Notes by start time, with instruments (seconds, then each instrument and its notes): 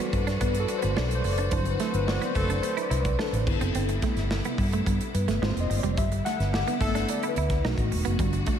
Already playing: string section E3 G3 D4 F#4, tine electric piano G3 D4 F#4 A4 B4 C5 D5
0.00 clean electric guitar B3, closed hi-hat
0.13 fingered electric bass G2, muted clean electric guitar stroke, kick, closed hi-hat
0.27 clean electric guitar D4, snare, closed hi-hat
0.41 fingered electric bass G2, clean electric guitar B3, tine electric piano B4, kick, closed hi-hat
0.54 closed hi-hat
0.60 tine electric piano A4
0.68 muted clean electric guitar stroke, closed hi-hat
0.78 tine electric piano C5
0.82 fingered electric bass G1, clean electric guitar B3, closed hi-hat
0.96 fingered electric bass B1, clean electric guitar D4, tine electric piano D5, snare
1.11 closed hi-hat
1.15 tine electric piano C5
1.24 fingered electric bass F#1, muted clean electric guitar stroke, open hi-hat
1.33 tine electric piano D5
1.38 clean electric guitar D4, closed hi-hat
1.51 fingered electric bass G1, string section D3 A3 C4, tine electric piano F#3 C4 E4 C5, clean electric guitar D4, kick, closed hi-hat
1.65 muted clean electric guitar stroke, closed hi-hat
1.70 tine electric piano B4
1.80 clean electric guitar A3, horn section A3 A4, snare, closed hi-hat
1.88 tine electric piano C5
1.94 fingered electric bass G1, horn section B3 B4, closed hi-hat
2.07 horn section F#3 F#4, tine electric piano D5, snare
2.22 clean electric guitar B3, tine electric piano C5, closed hi-hat
2.35 fingered electric bass F#1, horn section A3 A4, muted clean electric guitar stroke, kick, closed hi-hat
2.43 tine electric piano B4
2.50 clean electric guitar D4, closed hi-hat
2.62 tine electric piano C5, muted clean electric guitar stroke, closed hi-hat
2.77 clean electric guitar E4, closed hi-hat
2.82 tine electric piano D5
2.90 fingered electric bass C2, clean electric guitar E4, closed hi-hat
3.00 tine electric piano B4
3.05 kick, closed hi-hat
3.18 clean electric guitar D4, tine electric piano A4, snare
3.32 fingered electric bass A1, closed hi-hat
3.37 tine electric piano B4
3.47 fingered electric bass G1, string section C3 G3 B3 E4, tine electric piano B3 D4 E4, muted clean electric guitar stroke, kick, crash
3.56 tine electric piano A4
3.60 fingered electric bass F#1, clean electric guitar C4, closed hi-hat
3.75 fingered electric bass G1, clean electric guitar C4, closed hi-hat
3.89 muted clean electric guitar stroke, closed hi-hat
4.02 clean electric guitar A3, kick, snare, closed hi-hat
4.16 fingered electric bass G1, snare, closed hi-hat
4.31 snare
4.45 clean electric guitar B3, closed hi-hat
4.58 fingered electric bass G2, muted clean electric guitar stroke, kick, open hi-hat
4.72 clean electric guitar A3, closed hi-hat
4.86 fingered electric bass G2, clean electric guitar B3, kick, closed hi-hat
5.01 closed hi-hat
5.14 fingered electric bass G2, tine electric piano B4, muted clean electric guitar stroke, closed hi-hat
5.28 fingered electric bass G1, clean electric guitar A3, snare, closed hi-hat
5.41 fingered electric bass G#1, string section D#3 G#3 C4 F4, clean electric guitar G#3, tine electric piano A#3 C4 F4 C5, snare
5.56 fingered electric bass F1, closed hi-hat
5.60 tine electric piano D#5
5.70 fingered electric bass G1, muted clean electric guitar stroke, open hi-hat
5.79 tine electric piano D5
5.83 fingered electric bass F1, clean electric guitar G3, closed hi-hat
5.97 fingered electric bass G1, string section D3 G3 B3 E4, clean electric guitar G3, tine electric piano E5, kick, closed hi-hat
6.12 muted clean electric guitar stroke, closed hi-hat
6.25 horn section A3 A4, clean electric guitar A3, tine electric piano F#5, snare, closed hi-hat
6.39 fingered electric bass G1, horn section B3 B4, snare, closed hi-hat
6.52 horn section G3 G4, snare
6.68 clean electric guitar B3, closed hi-hat
6.80 fingered electric bass G1, horn section A3 A4, tine electric piano A3 B3 E4 E5, muted clean electric guitar stroke, kick, closed hi-hat
6.95 clean electric guitar D4, snare, closed hi-hat
7.08 tine electric piano D5, muted clean electric guitar stroke, closed hi-hat
7.23 clean electric guitar E4, closed hi-hat
7.29 tine electric piano B4
7.36 fingered electric bass D2, clean electric guitar E4, closed hi-hat
7.50 kick, snare, closed hi-hat
7.64 fingered electric bass B1, string section D#3 A3 F#4, tine electric piano A3 D#4 F#4, clean electric guitar D#4, snare
7.78 fingered electric bass A1, kick, closed hi-hat
7.92 fingered electric bass E1, muted clean electric guitar stroke, open hi-hat
8.05 fingered electric bass F#1, clean electric guitar B3, closed hi-hat
8.19 fingered electric bass G1, string section E3 G3 D4, clean electric guitar G3, tine electric piano G3 D4 F#4, kick, closed hi-hat
8.33 muted clean electric guitar stroke, closed hi-hat
8.46 clean electric guitar A3, kick, closed hi-hat